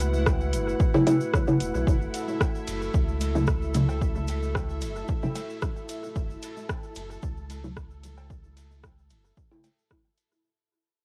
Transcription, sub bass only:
0.00 0.55 C#2 medium
0.53 0.75 F#1 medium
1.60 1.72 E1 medium
1.75 1.84 B1 medium
1.87 2.09 F#1 loud
2.68 2.89 F#1 medium
2.94 4.83 C#2 medium
4.82 5.03 F#1 medium
6.16 6.37 F#1 loud
6.96 7.18 F#1 medium
7.23 9.12 C#2 medium
9.10 9.32 F#1 medium

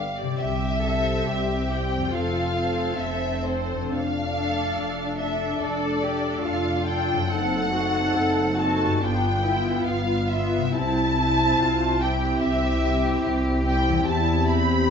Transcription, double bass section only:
0.00 0.19 G1 medium
0.41 1.17 C2 medium
1.28 2.03 C2 medium
2.14 2.88 F1 medium
2.99 3.81 F1 medium
3.92 4.67 F1 medium
4.77 5.51 F1 medium
5.61 6.35 F1 medium
6.45 7.20 F1 medium
7.30 8.05 F#1 medium
8.15 8.91 F#1 medium
9.01 9.75 G1 medium
9.85 10.64 G1 medium
10.76 11.50 C2 medium
11.60 12.33 C2 medium
12.43 13.15 C2 medium
13.25 13.97 C2 medium
14.07 14.81 E2 medium

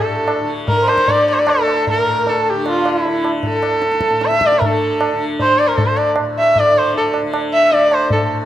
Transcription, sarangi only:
0.00 0.05 G4 medium
0.05 0.47 A4 medium
0.68 0.90 A#4 medium
0.88 1.11 C5 medium
1.09 1.28 D5 medium
1.29 1.35 D5 medium
1.33 1.41 C5 medium
1.39 1.51 D5 medium
1.49 1.88 A4 medium
1.90 2.30 A#4 medium
2.29 2.51 A4 medium
2.49 2.67 G4 medium
2.69 2.91 F4 medium
2.89 3.27 E4 medium
3.47 4.27 A4 medium
4.26 4.48 E5 loud
4.46 4.60 D5 medium
4.58 4.67 A#4 medium
4.66 5.22 A4 medium
5.41 5.60 C5 medium
5.58 5.69 D5 medium
5.68 5.78 A#4 medium
5.76 5.88 A4 medium
5.86 5.99 C5 medium
5.97 6.07 D5 medium
6.39 6.60 E5 medium
6.59 6.79 D5 medium
6.78 6.96 C5 medium
6.97 7.14 A4 medium
7.54 7.74 E5 medium
7.73 7.95 D5 medium
7.93 8.11 C5 medium
8.12 8.29 A4 medium

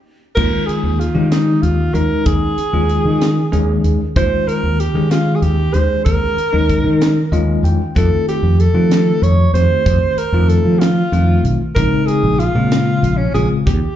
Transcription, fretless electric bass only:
0.37 0.49 D#2 medium
0.69 muted fretless electric bass stroke soft
0.83 1.08 D#2 medium
1.15 1.51 D#3 medium
1.63 1.87 D#2 medium
1.95 2.07 D#2 medium
2.26 2.38 D#2 medium
2.58 muted fretless electric bass stroke soft
2.73 2.97 D#2 medium
3.05 3.41 D#3 medium
3.53 3.77 D#2 medium
3.84 3.96 D#2 medium
4.16 4.28 D#2 loud
4.47 muted fretless electric bass stroke soft
4.63 4.87 D#2 medium
4.94 5.30 D#3 medium
5.42 5.66 D#2 medium
5.75 5.86 D#2 medium
6.06 6.18 D#2 medium
6.37 muted fretless electric bass stroke soft
6.54 6.77 D#2 medium
6.84 7.20 D#3 medium
7.32 7.56 D#2 medium
7.63 7.75 E2 medium
7.96 8.08 F2 medium
8.27 muted fretless electric bass stroke soft
8.43 8.67 F2 medium
8.74 9.10 F3 medium
9.22 9.46 F2 medium
9.53 9.66 F2 medium
9.86 9.98 F2 medium
10.17 muted fretless electric bass stroke soft
10.32 10.57 F2 medium
10.65 11.01 F3 medium
11.12 11.36 F2 medium
11.44 11.56 B1 medium
11.76 11.88 A#1 medium
12.08 muted fretless electric bass stroke soft
12.23 12.47 A#1 medium
12.55 12.91 A#2 medium
13.03 13.27 A#1 medium
13.34 13.47 A#1 medium
13.67 13.79 D#2 loud

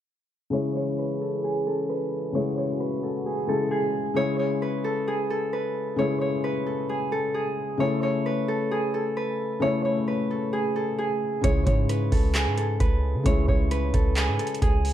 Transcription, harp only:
0.53 0.75 C#5 loud
0.76 2.34 C#5 medium
0.99 1.89 B4 medium
1.21 1.50 A4 medium
1.44 1.73 G#4 medium
1.67 3.03 A4 medium
1.89 2.80 B4 medium
2.35 2.57 C#5 loud
2.57 4.16 C#5 medium
2.80 4.62 B4 medium
3.03 3.32 A4 medium
3.26 3.55 G#4 medium
3.49 3.77 A4 medium
3.71 4.90 G#4 medium
4.16 4.39 C#5 loud
4.39 5.98 C#5 medium
4.62 5.53 B4 medium
4.84 5.14 A4 medium
5.08 5.36 G#4 loud
5.30 6.66 A4 medium
5.53 6.43 B4 medium
5.99 6.21 C#5 loud
6.21 7.80 C#5 medium
6.44 8.25 B4 medium
6.66 6.95 A4 medium
6.89 7.18 G#4 medium
7.12 7.40 A4 medium
7.34 8.54 G#4 medium
7.80 8.03 C#5 loud
8.03 9.62 C#5 medium
8.26 9.16 B4 medium
8.48 8.77 A4 medium
8.71 9.00 G#4 medium
8.94 10.30 A4 medium
9.17 10.07 B4 medium
9.62 9.84 C#5 loud
9.85 11.43 C#5 medium
10.08 11.89 B4 medium
10.30 10.59 A4 medium
10.53 10.82 G#4 medium
10.76 11.04 A4 medium
10.98 12.18 G#4 medium
11.44 11.66 C#5 loud
11.66 13.25 C#5 medium
11.89 12.80 B4 medium
12.12 12.41 A4 medium
12.35 12.64 G#4 medium
12.58 13.93 A4 medium
12.80 13.71 B4 medium
13.26 13.48 C#5 loud
13.49 14.93 C#5 medium
13.71 14.93 B4 medium
13.94 14.23 A4 medium
14.17 14.45 G#4 medium
14.39 14.68 A4 medium
14.62 14.93 G#4 medium

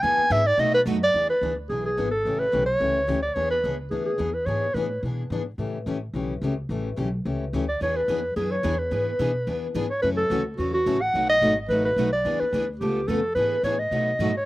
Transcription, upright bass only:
0.03 0.17 E2 medium
0.18 muted upright bass stroke soft
0.30 0.57 G#2 loud
0.58 0.85 B2 medium
0.86 1.12 F#2 loud
1.14 1.41 E2 medium
1.41 1.68 D2 medium
1.70 1.96 B1 medium
1.97 2.24 G#1 medium
2.25 2.52 A1 medium
2.53 2.80 B1 medium
2.81 3.07 C#2 medium
3.09 3.35 D2 medium
3.36 3.63 E2 medium
3.64 3.91 C#2 medium
3.91 4.18 D2 medium
4.19 4.46 E2 medium
4.46 4.74 G#2 medium
4.74 5.02 A2 medium
5.03 5.30 B2 medium
5.30 5.57 G#2 medium
5.58 5.85 A2 medium
5.86 6.13 A1 medium
6.14 6.41 B1 medium
6.42 6.69 C#2 medium
6.69 6.96 A1 medium
6.97 7.24 B1 medium
7.25 7.52 C#2 medium
7.53 7.80 D2 medium
7.81 8.07 E2 medium
8.08 8.35 F2 medium
8.36 8.63 F#2 medium
8.64 8.91 E2 medium
8.91 9.18 G#2 medium
9.19 9.46 B2 medium
9.47 9.74 E2 medium
9.75 10.02 G#2 medium
10.03 10.29 F#2 medium
10.30 10.57 D2 medium
10.58 10.85 E2 medium
10.86 11.13 A1 medium
11.14 11.41 B1 medium
11.42 11.68 G#1 medium
11.69 11.96 A1 medium
11.96 12.24 B1 medium
12.25 12.40 E2 medium
12.41 muted upright bass stroke soft
12.53 12.80 D2 medium
12.81 13.07 C#2 medium
13.08 13.35 F2 medium
13.36 13.63 G#2 medium
13.63 13.90 A2 medium
13.91 14.18 B2 medium
14.19 14.45 G#2 medium

